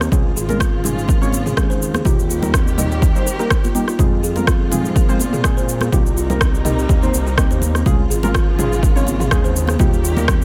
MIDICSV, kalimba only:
0, 0, Header, 1, 2, 480
1, 0, Start_track
1, 0, Tempo, 483871
1, 118, Time_signature, 4, 2, 24, 8
1, 10360, End_track
2, 0, Start_track
2, 0, Title_t, "Kalimba"
2, 0, Program_c, 0, 108
2, 8, Note_on_c, 0, 60, 72
2, 67, Note_off_c, 0, 60, 0
2, 119, Note_on_c, 0, 65, 79
2, 235, Note_off_c, 0, 65, 0
2, 359, Note_on_c, 0, 68, 74
2, 482, Note_off_c, 0, 68, 0
2, 598, Note_on_c, 0, 65, 94
2, 715, Note_off_c, 0, 65, 0
2, 839, Note_on_c, 0, 63, 76
2, 955, Note_off_c, 0, 63, 0
2, 1079, Note_on_c, 0, 70, 80
2, 1149, Note_off_c, 0, 70, 0
2, 1208, Note_on_c, 0, 60, 96
2, 1313, Note_off_c, 0, 60, 0
2, 1447, Note_on_c, 0, 68, 73
2, 1547, Note_off_c, 0, 68, 0
2, 1687, Note_on_c, 0, 72, 94
2, 1787, Note_off_c, 0, 72, 0
2, 1927, Note_on_c, 0, 68, 73
2, 1987, Note_off_c, 0, 68, 0
2, 2037, Note_on_c, 0, 65, 99
2, 2160, Note_off_c, 0, 65, 0
2, 2277, Note_on_c, 0, 65, 72
2, 2394, Note_off_c, 0, 65, 0
2, 2517, Note_on_c, 0, 60, 83
2, 2587, Note_off_c, 0, 60, 0
2, 2757, Note_on_c, 0, 75, 97
2, 2828, Note_off_c, 0, 75, 0
2, 2997, Note_on_c, 0, 67, 98
2, 3121, Note_off_c, 0, 67, 0
2, 3127, Note_on_c, 0, 72, 71
2, 3227, Note_off_c, 0, 72, 0
2, 3237, Note_on_c, 0, 70, 76
2, 3308, Note_off_c, 0, 70, 0
2, 3366, Note_on_c, 0, 67, 96
2, 3427, Note_off_c, 0, 67, 0
2, 3607, Note_on_c, 0, 65, 70
2, 3713, Note_off_c, 0, 65, 0
2, 3847, Note_on_c, 0, 65, 71
2, 3907, Note_off_c, 0, 65, 0
2, 3956, Note_on_c, 0, 65, 78
2, 4074, Note_off_c, 0, 65, 0
2, 4197, Note_on_c, 0, 68, 76
2, 4320, Note_off_c, 0, 68, 0
2, 4437, Note_on_c, 0, 65, 98
2, 4554, Note_off_c, 0, 65, 0
2, 4676, Note_on_c, 0, 63, 74
2, 4794, Note_off_c, 0, 63, 0
2, 4918, Note_on_c, 0, 70, 85
2, 4988, Note_off_c, 0, 70, 0
2, 5047, Note_on_c, 0, 60, 100
2, 5153, Note_off_c, 0, 60, 0
2, 5287, Note_on_c, 0, 68, 75
2, 5387, Note_off_c, 0, 68, 0
2, 5527, Note_on_c, 0, 72, 98
2, 5627, Note_off_c, 0, 72, 0
2, 5767, Note_on_c, 0, 68, 70
2, 5827, Note_off_c, 0, 68, 0
2, 5878, Note_on_c, 0, 65, 97
2, 6001, Note_off_c, 0, 65, 0
2, 6117, Note_on_c, 0, 65, 76
2, 6234, Note_off_c, 0, 65, 0
2, 6357, Note_on_c, 0, 60, 78
2, 6427, Note_off_c, 0, 60, 0
2, 6596, Note_on_c, 0, 75, 104
2, 6667, Note_off_c, 0, 75, 0
2, 6837, Note_on_c, 0, 67, 99
2, 6960, Note_off_c, 0, 67, 0
2, 6967, Note_on_c, 0, 72, 75
2, 7067, Note_off_c, 0, 72, 0
2, 7207, Note_on_c, 0, 67, 74
2, 7307, Note_off_c, 0, 67, 0
2, 7447, Note_on_c, 0, 72, 70
2, 7552, Note_off_c, 0, 72, 0
2, 7688, Note_on_c, 0, 60, 73
2, 7747, Note_off_c, 0, 60, 0
2, 7797, Note_on_c, 0, 65, 79
2, 7914, Note_off_c, 0, 65, 0
2, 8037, Note_on_c, 0, 68, 75
2, 8161, Note_off_c, 0, 68, 0
2, 8277, Note_on_c, 0, 65, 101
2, 8394, Note_off_c, 0, 65, 0
2, 8518, Note_on_c, 0, 63, 78
2, 8635, Note_off_c, 0, 63, 0
2, 8757, Note_on_c, 0, 70, 82
2, 8827, Note_off_c, 0, 70, 0
2, 8887, Note_on_c, 0, 60, 101
2, 8992, Note_off_c, 0, 60, 0
2, 9127, Note_on_c, 0, 68, 75
2, 9227, Note_off_c, 0, 68, 0
2, 9367, Note_on_c, 0, 72, 97
2, 9467, Note_off_c, 0, 72, 0
2, 9607, Note_on_c, 0, 68, 72
2, 9667, Note_off_c, 0, 68, 0
2, 9718, Note_on_c, 0, 65, 98
2, 9841, Note_off_c, 0, 65, 0
2, 9957, Note_on_c, 0, 65, 75
2, 10074, Note_off_c, 0, 65, 0
2, 10196, Note_on_c, 0, 60, 84
2, 10267, Note_off_c, 0, 60, 0
2, 10360, End_track
0, 0, End_of_file